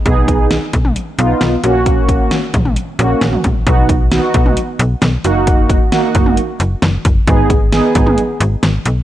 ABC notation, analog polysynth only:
X:1
M:4/4
L:1/8
Q:1/4=133
K:Cblyd
V:1 name="Analog polysynth"
[=B,^D^G]2 z3 [B,DF]2 [_B,_D_G]- | [B,DG]2 z3 [B,DG]2 z | [=B,^D^F] z [B,DF]2 z3 [_B,EG]- | [B,EG] z [B,EG]2 z4 |
[CEA] z [CEA]2 z4 |]